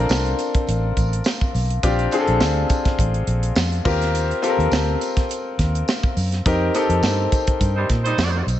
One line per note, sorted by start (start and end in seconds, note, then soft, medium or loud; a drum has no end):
0.00 1.83 C4 medium
0.00 1.83 D4 medium
0.00 1.84 F4 medium
0.00 2.20 A4 loud
0.00 0.62 A#4 loud
0.09 0.33 C2 medium
0.09 snare loud
0.09 tambourine loud
0.26 closed hi-hat soft
0.38 closed hi-hat medium
0.38 tambourine medium
0.54 kick loud
0.54 closed hi-hat medium
0.67 0.91 A1 loud
0.67 closed hi-hat medium
0.67 tambourine soft
0.97 1.20 A1 medium
0.97 kick medium
0.97 closed hi-hat medium
0.97 tambourine soft
1.13 closed hi-hat soft
1.24 snare loud
1.24 tambourine medium
1.41 kick loud
1.54 1.77 B1 medium
1.54 open hi-hat medium
1.54 tambourine soft
1.70 closed hi-hat medium
1.83 2.06 A#1 loud
1.83 2.04 C4 medium
1.83 2.04 D4 medium
1.83 2.04 F4 medium
1.83 2.04 G4 medium
1.83 kick loud
1.83 closed hi-hat medium
1.83 tambourine soft
1.99 closed hi-hat soft
2.11 2.92 C4 medium
2.11 2.93 D4 medium
2.11 2.93 F4 medium
2.11 2.20 G#4 medium
2.11 closed hi-hat medium
2.11 tambourine soft
2.20 2.96 A4 medium
2.27 2.38 A#1 loud
2.27 closed hi-hat soft
2.40 2.64 D2 medium
2.40 snare loud
2.40 tambourine loud
2.69 kick medium
2.69 closed hi-hat medium
2.69 tambourine medium
2.85 kick loud
2.85 snare soft
2.85 closed hi-hat soft
2.99 3.22 A1 medium
2.99 kick medium
2.99 closed hi-hat medium
3.14 closed hi-hat soft
3.27 3.50 A#1 medium
3.27 closed hi-hat medium
3.43 closed hi-hat medium
3.56 3.79 F2 medium
3.56 snare loud
3.56 tambourine loud
3.72 closed hi-hat soft
3.85 4.31 D#2 loud
3.85 4.32 C4 medium
3.85 4.32 F4 medium
3.85 4.32 G4 medium
3.85 4.32 A#4 loud
3.85 kick loud
3.85 tambourine soft
3.85 crash medium
4.02 snare soft
4.02 closed hi-hat medium
4.15 closed hi-hat medium
4.15 tambourine soft
4.31 closed hi-hat soft
4.42 5.23 C4 medium
4.42 5.23 F4 medium
4.42 5.23 G4 medium
4.42 4.50 A4 medium
4.42 closed hi-hat medium
4.42 tambourine soft
4.50 5.27 A#4 medium
4.58 4.69 D#2 medium
4.58 closed hi-hat soft
4.72 4.95 D2 medium
4.72 snare loud
4.72 tambourine loud
5.01 closed hi-hat medium
5.01 tambourine medium
5.17 kick medium
5.17 snare soft
5.17 closed hi-hat medium
5.29 closed hi-hat medium
5.29 tambourine soft
5.59 5.82 D#2 medium
5.59 kick medium
5.59 snare soft
5.59 closed hi-hat medium
5.75 closed hi-hat medium
5.88 snare loud
5.88 tambourine medium
6.03 kick loud
6.17 6.39 F#2 medium
6.17 open hi-hat medium
6.17 tambourine soft
6.32 snare soft
6.32 closed hi-hat medium
6.46 6.68 F2 medium
6.46 6.66 C4 medium
6.46 6.66 D#4 medium
6.46 6.66 G4 medium
6.46 6.66 A#4 medium
6.46 kick loud
6.46 closed hi-hat medium
6.46 tambourine soft
6.74 7.54 C4 medium
6.74 7.55 D#4 medium
6.74 7.55 G4 medium
6.74 7.55 A4 medium
6.74 closed hi-hat medium
6.74 tambourine soft
6.89 7.00 F2 medium
6.89 closed hi-hat soft
7.03 7.26 G2 loud
7.03 snare loud
7.03 tambourine medium
7.32 kick medium
7.32 closed hi-hat medium
7.32 tambourine medium
7.47 kick medium
7.47 closed hi-hat soft
7.61 7.84 G2 loud
7.61 kick medium
7.61 closed hi-hat medium
7.61 tambourine soft
7.75 7.87 G3 medium
7.75 7.87 D#4 medium
7.75 7.87 C5 medium
7.89 8.12 A#2 medium
7.89 kick medium
7.89 snare soft
7.89 closed hi-hat medium
8.04 8.44 G3 loud
8.04 8.45 D#4 medium
8.04 8.44 C5 loud
8.04 closed hi-hat soft
8.18 8.41 F2 medium
8.18 snare loud
8.18 tambourine loud
8.47 8.60 B1 medium
8.47 closed hi-hat medium
8.47 tambourine soft